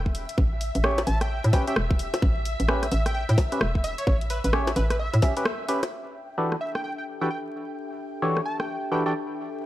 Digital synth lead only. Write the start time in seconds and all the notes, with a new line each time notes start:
1.07 A5
1.21 G5
1.53 G5
1.68 G5
2.92 E5
3.06 G5
3.14 G5
3.29 G5
3.84 E5
3.98 C#5
4.07 C#5
4.30 B4
4.45 B4
4.76 B4
4.91 B4
4.99 E5
6.61 E5
6.75 G5
6.84 G5
6.98 G5
7.21 G5
7.30 G5
8.46 A5
8.60 G5
8.92 G5
9.06 G5